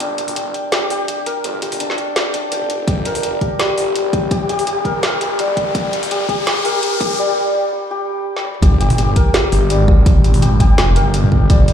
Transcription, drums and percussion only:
0.00 closed hi-hat
0.10 mid tom
0.18 closed hi-hat
0.28 mid tom, open hi-hat
0.36 closed hi-hat
0.54 closed hi-hat
0.72 snare, closed hi-hat
0.90 open hi-hat
1.08 closed hi-hat
1.26 closed hi-hat
1.44 closed hi-hat
1.54 mid tom
1.62 closed hi-hat
1.72 mid tom, open hi-hat
1.80 closed hi-hat
1.90 snare
1.98 closed hi-hat
2.16 snare, closed hi-hat
2.34 closed hi-hat
2.52 closed hi-hat
2.61 mid tom
2.70 closed hi-hat
2.88 kick, closed hi-hat
2.97 mid tom
3.05 closed hi-hat
3.15 mid tom, open hi-hat
3.23 closed hi-hat
3.41 kick, closed hi-hat
3.60 snare, closed hi-hat
3.78 open hi-hat
3.96 closed hi-hat
4.13 kick, closed hi-hat
4.31 kick, closed hi-hat
4.41 mid tom
4.49 closed hi-hat
4.59 mid tom, open hi-hat
4.67 closed hi-hat
4.85 kick, closed hi-hat
5.03 snare, closed hi-hat
5.21 closed hi-hat
5.39 closed hi-hat
5.49 mid tom
5.57 kick, closed hi-hat
5.75 kick, closed hi-hat
5.85 mid tom
5.93 closed hi-hat
6.03 mid tom, open hi-hat
6.11 closed hi-hat
6.29 kick, closed hi-hat
6.47 snare, closed hi-hat
6.65 open hi-hat
6.83 closed hi-hat
7.01 kick, closed hi-hat
8.36 snare
8.45 mid tom
8.54 mid tom
8.62 kick, closed hi-hat
8.72 mid tom
8.81 closed hi-hat
8.90 mid tom, open hi-hat
8.98 closed hi-hat
9.16 kick, closed hi-hat
9.34 snare, closed hi-hat
9.52 open hi-hat
9.70 closed hi-hat
9.88 kick
10.06 kick, closed hi-hat
10.16 mid tom
10.24 closed hi-hat
10.34 mid tom, open hi-hat
10.36 mid tom
10.40 closed hi-hat, mid tom
10.42 mid tom
10.46 mid tom
10.48 mid tom
10.60 kick, closed hi-hat
10.78 snare, closed hi-hat
10.96 closed hi-hat
11.14 closed hi-hat
11.24 mid tom
11.32 kick
11.50 kick, closed hi-hat
11.60 mid tom
11.68 closed hi-hat

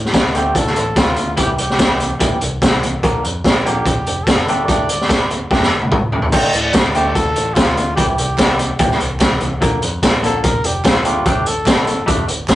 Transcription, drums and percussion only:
0.05 snare
0.14 kick, snare, closed hi-hat
0.35 closed hi-hat
0.55 kick, closed hi-hat
0.66 snare
0.76 closed hi-hat
0.96 kick, snare, closed hi-hat
1.16 closed hi-hat
1.37 kick, closed hi-hat
1.58 closed hi-hat
1.70 snare
1.79 kick, snare, closed hi-hat
2.00 closed hi-hat
2.20 kick, closed hi-hat
2.41 closed hi-hat
2.62 kick, snare, closed hi-hat
2.83 closed hi-hat
3.03 kick, closed hi-hat
3.24 closed hi-hat
3.44 kick, snare, closed hi-hat
3.66 closed hi-hat
3.86 kick, closed hi-hat
4.06 closed hi-hat
4.27 kick, snare, closed hi-hat
4.48 closed hi-hat
4.68 kick, closed hi-hat
4.89 closed hi-hat
5.01 snare
5.09 kick, snare, closed hi-hat
5.30 closed hi-hat
5.51 kick, snare
5.62 snare
5.81 high tom
5.92 kick, mid tom
6.12 floor tom
6.22 floor tom
6.32 kick, crash
6.53 closed hi-hat
6.73 kick, snare, clap, closed hi-hat
6.95 closed hi-hat
7.15 kick, closed hi-hat
7.36 closed hi-hat
7.56 kick, snare, clap, closed hi-hat
7.77 closed hi-hat
7.97 kick, closed hi-hat
8.18 closed hi-hat
8.38 kick, snare, clap, closed hi-hat
8.59 closed hi-hat
8.79 kick, closed hi-hat
8.91 snare
9.00 closed hi-hat
9.20 kick, snare, clap, closed hi-hat
9.40 closed hi-hat
9.62 kick, closed hi-hat
9.82 closed hi-hat
10.03 kick, snare, clap, closed hi-hat
10.24 closed hi-hat
10.44 kick, closed hi-hat
10.64 closed hi-hat
10.85 kick, snare, clap, closed hi-hat
11.05 closed hi-hat
11.26 kick, closed hi-hat
11.46 closed hi-hat
11.66 kick, snare, clap, closed hi-hat
11.87 closed hi-hat
12.08 kick, closed hi-hat
12.28 closed hi-hat
12.48 kick, snare, clap, closed hi-hat

